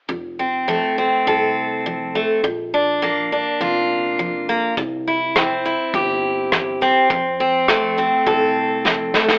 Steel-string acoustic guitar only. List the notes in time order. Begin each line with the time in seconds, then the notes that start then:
0.09 F2
0.40 C4
0.68 F3 A3
0.98 C4
1.27 C3 A4
1.86 F3
2.15 A3
2.43 A#2
2.73 D4
3.02 F3 A#3
3.32 D4
3.61 F2 F4
4.19 F3
4.49 A#3
4.77 C3
5.07 E4
5.35 E3 C4
5.65 E4
5.94 G2 G4
6.52 E3
6.82 C4
7.11 F2
7.40 C4
7.69 F3 A3
7.98 C4
8.27 C3 A4
8.85 F3
9.14 A3